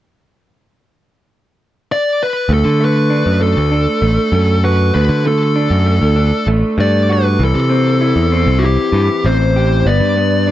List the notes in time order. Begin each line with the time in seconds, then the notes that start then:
1.92 D5
2.23 B4
2.49 D2 A3
2.53 A4
2.65 D3
2.80 A3
2.85 B4
3.10 D4
3.26 F#2
3.40 A3 A4
3.57 D2
3.71 D4
4.02 A1 A3
4.32 F#2 A3
4.64 F#4 B4
4.94 D2 A3 B4
5.09 D3
5.25 A3 A4
5.56 D4
5.70 F#2
5.86 A3
6.02 D2
6.16 D4
6.47 A1 A3
6.78 G2 A3 D5
7.09 F#4 B4
7.39 C2 E3
7.45 A4
7.54 C3
7.70 C4
8.01 E4
8.16 E2
8.32 C4
8.47 C2
8.59 E4 F#4
8.65 G4
8.92 G2 E3
9.25 A1 C4 C5
9.56 G4
9.84 G1 B3 D5
10.00 G2
10.17 B3
10.47 D4